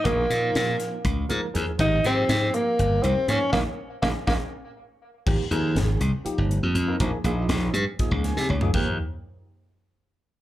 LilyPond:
<<
  \new Staff \with { instrumentName = "Tine electric piano" } { \time 7/8 \key ees \mixolydian \tempo 4 = 121 << { r2. r8 | r2. r8 | <des' ees' aes'>8 r8 <des' ees' aes'>8 <des' ees' aes'>8 r4. | r2. r8 |
r2 r8 aes''8 des''8 | r2. r8 | } \\ { <f bes ees' aes'>16 r16 <f bes ees' f'>4~ <f bes ees' f'>16 r8. <f bes ees' bes'>16 r16 <f bes ees' aes'>16 r16 | <f bes ees' g'>16 r16 <f bes ees' g'>4~ <f bes ees' g'>16 r8. <f bes ees' g'>16 r16 <f bes ees' bes'>16 r16 | r2. r8 | <f bes ees' g'>16 r16 <f bes ees' aes'>4 r8 <f bes ees' g'>8. r8 <f bes ees' bes'>16 |
<f bes ees' aes'>16 r16 <f bes ees' aes'>4 r8 <f bes ees' aes'>8. r8 <f bes ees' aes'>16 | <f bes ees' g'>8 r2. | } >> }
  \new Staff \with { instrumentName = "Hollow-body jazz guitar" } { \time 7/8 \key ees \mixolydian bes2 r4. | ees'8 c'4 bes4 c'8 des'8 | <bes des' ees'>8 r8 <bes des' ees'>8 <bes des' ees'>8 r4. | r2. r8 |
r2. r8 | r2. r8 | }
  \new Staff \with { instrumentName = "Tenor saxophone" } { \time 7/8 \key ees \mixolydian bes2 r4. | ees'8 c'4 bes4 c'8 des'8 | bes8 r8 bes8 bes8 r4. | r2. r8 |
r2. r8 | r2. r8 | }
  \new Staff \with { instrumentName = "Slap bass" } { \clef bass \time 7/8 \key ees \mixolydian bes,,8 bes,8 bes,8 r8 des,8 aes,16 r16 ees,16 r16 | aes,,8 aes,8 aes,8 r8 g,,8 c,16 r16 aes,16 r16 | bes,,16 r8. bes,,16 r16 bes,,16 r4. r16 | aes,,16 r16 ees,8 aes,,8 c,16 r8 g,,8 f,16 f,8 |
bes,,16 r16 bes,,8 bes,,8 g,16 r8 des,8 c16 des,8 | ees,8 r2. | }
  \new DrumStaff \with { instrumentName = "Drums" } \drummode { \time 7/8 <hh bd>8 <hh sn>8 <hh sn>8 <hh sn>8 <hh bd>8 hh8 <hh sn>8 | <hh bd>8 <hh sn>8 <hh sn>8 hh8 hh8 hh8 <hh sn>8 | <bd sn>4 <bd sn>8 <bd sn>8 r4. | <cymc bd>8 hh8 <hh sn>8 hh8 hh8 hh8 hh8 |
<hh bd>8 hh8 <hh sn>8 hh8 <hh bd sn>8 <hh sn>16 sn16 toml16 tomfh16 | <cymc bd>4 r4 r4. | }
>>